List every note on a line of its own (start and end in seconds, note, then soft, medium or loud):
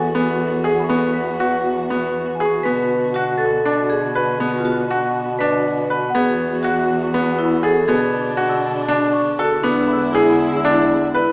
0.00 2.47 E2 medium
0.00 2.62 E3 medium
0.00 2.62 B3 medium
0.00 6.11 F#4 medium
0.00 1.18 A4 medium
0.00 1.60 G#5 medium
0.15 0.55 B3 medium
0.64 0.84 G#4 medium
0.75 2.41 F#5 medium
0.80 2.39 B5 soft
0.80 2.44 C#6 soft
0.89 1.30 B3 medium
1.13 2.35 B4 medium
1.40 1.80 F#4 medium
1.90 2.31 B3 medium
2.35 2.85 G#5 soft
2.40 2.60 G#4 medium
2.40 2.88 B5 soft
2.45 2.90 C#6 soft
2.63 6.10 B2 medium
2.63 6.11 D3 medium
2.63 3.06 B3 medium
2.63 9.61 B3 medium
2.63 3.16 B4 medium
3.14 3.40 F#4 medium
3.14 3.56 F#4 medium
3.38 3.91 A4 medium
3.65 4.06 D4 medium
3.90 4.60 G#4 medium
4.15 4.35 B4 medium
4.40 4.80 B3 medium
4.58 4.65 F4 medium
4.65 5.35 F#4 medium
4.91 5.30 F#4 medium
5.39 5.80 D4 medium
5.39 6.10 B4 medium
5.90 6.10 B4 medium
6.10 7.83 E2 medium
6.10 6.36 F#5 medium
6.14 7.86 E3 medium
6.14 6.54 B3 medium
6.14 7.86 F#4 medium
6.14 6.65 G#4 medium
6.63 7.40 F#4 medium
6.63 7.04 F#4 medium
7.14 7.54 B3 medium
7.39 7.61 E4 medium
7.45 8.09 B5 medium
7.63 7.83 G#4 medium
7.63 7.89 A4 medium
7.87 9.46 B2 medium
7.87 9.62 D3 medium
7.87 8.28 B3 medium
7.87 9.63 D4 medium
7.87 9.43 G#4 medium
8.37 8.78 F#4 medium
8.49 9.86 E6 medium
8.88 9.29 D4 medium
9.13 9.86 C#6 medium
9.39 9.62 F#4 medium
9.39 9.59 A4 medium
9.63 11.32 E2 medium
9.63 11.32 D3 medium
9.63 11.32 G#3 medium
9.63 10.04 B3 medium
9.63 10.16 D4 medium
9.63 11.32 E4 medium
9.87 11.32 B5 medium
9.93 10.55 E6 medium
9.98 11.32 F#6 soft
10.13 11.32 E4 medium
10.13 10.55 G#4 medium
10.57 11.32 E6 medium
10.65 11.05 D4 medium
11.14 11.32 B4 medium